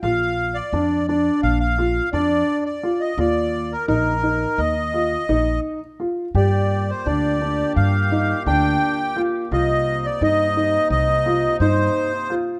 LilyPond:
<<
  \new Staff \with { instrumentName = "Accordion" } { \time 9/8 \key ees \major \tempo 4. = 57 f''8. d''8. d''8 f''16 f''8. d''8. d''8 ees''16 | d''8. bes'16 bes'4 ees''4. r4 | d''8. c''16 d''4 f''4 g''4 r8 | ees''8. d''16 ees''4 ees''4 c''4 r8 | }
  \new Staff \with { instrumentName = "Grand piano" } { \time 9/8 \key ees \major f'4 d'8 d'4 f'8 d'4 f'8 | f'4 ees'8 ees'4 f'8 ees'4 f'8 | g'4 d'8 d'4 ees'8 d'4 f'8 | f'4 ees'8 ees'4 f'8 ees'4 f'8 | }
  \new Staff \with { instrumentName = "Woodwind section" } { \time 9/8 \key ees \major << { r1 r8 | r1 r8 | <bes, g'>1~ <bes, g'>8 | <c ees'>1~ <c ees'>8 | } \\ { r1 r8 | r1 r8 | bes1~ bes8~ | bes1~ bes8 | } >> }
  \new Staff \with { instrumentName = "Upright bass" } { \clef bass \time 9/8 \key ees \major bes,,4 f,4 bes,,4 f,8 r4 | ees,4 bes,,4 ees,4 bes,,8 r4 | g,4 d,4 g,4 d,8 r4 | c,4 g,4 c,4 g,8 r4 | }
>>